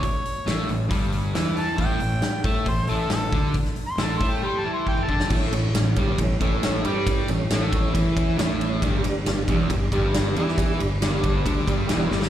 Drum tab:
CC |----------------|----------------|----------------|x---------------|
RD |----------------|----------------|----------------|--x-x-x-x-x-x-x-|
HH |o-o-o-o-o-o-o-o-|o-o-o-o-o-o-o-o-|o-o-o-o---------|----------------|
SD |----o-------o---|----o-------o---|-o--o----------o|----o-------o---|
T2 |----------------|----------------|-------------o--|----------------|
BD |o-------o-------|o-----o-o-----o-|o-----o-----o-o-|o-----o-o-o-----|

CC |----------------|----------------|----------------|
RD |x-x-x-x-x-x-x-x-|x-x-x-x-x-x-x-x-|x-x-x-x-x-x-x---|
HH |----------------|----------------|----------------|
SD |----o-------o---|----o-------o--o|----o-------o-oo|
T2 |----------------|----------------|----------------|
BD |o-----o-o-o-----|o-----o-o-o-----|o-----o-o-o-----|